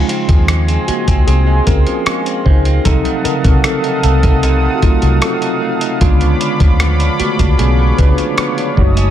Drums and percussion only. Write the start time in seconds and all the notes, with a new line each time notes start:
0.09 closed hi-hat
0.29 kick, closed hi-hat
0.48 cross-stick, closed hi-hat
0.68 closed hi-hat
0.88 closed hi-hat
1.08 kick, closed hi-hat
1.28 closed hi-hat
1.67 kick, closed hi-hat
1.87 closed hi-hat
2.06 cross-stick, closed hi-hat
2.26 closed hi-hat
2.46 kick
2.65 closed hi-hat
2.85 kick, closed hi-hat
3.05 closed hi-hat
3.25 closed hi-hat
3.44 kick, closed hi-hat
3.64 cross-stick, closed hi-hat
3.84 closed hi-hat
4.03 closed hi-hat
4.23 kick, closed hi-hat
4.43 closed hi-hat
4.82 kick, closed hi-hat
5.02 closed hi-hat
5.22 cross-stick, closed hi-hat
5.42 closed hi-hat
5.81 closed hi-hat
6.01 kick, closed hi-hat
6.21 closed hi-hat
6.41 closed hi-hat
6.60 kick, closed hi-hat
6.80 cross-stick, closed hi-hat
7.00 closed hi-hat
7.20 closed hi-hat
7.39 kick, closed hi-hat
7.59 closed hi-hat
7.98 kick, closed hi-hat
8.18 closed hi-hat
8.38 cross-stick, closed hi-hat
8.58 closed hi-hat
8.77 kick
8.97 closed hi-hat